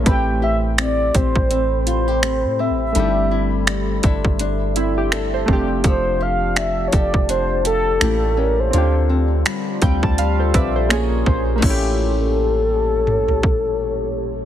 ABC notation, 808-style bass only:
X:1
M:4/4
L:1/16
Q:"Swing 16ths" 1/4=83
K:Am
V:1 name="808-style bass" clef=bass
A,,,6 A,,, A,,,6 A,,3/2 A,,,3/2 | G,,,6 G,,, G,,,6- G,,, F,,,2 | F,,,6 F,,, F,,,4- F,,, A,,,4 | D,,4 z2 D,, D,,3 _B,,,4 B,,,2 |
A,,,16 |]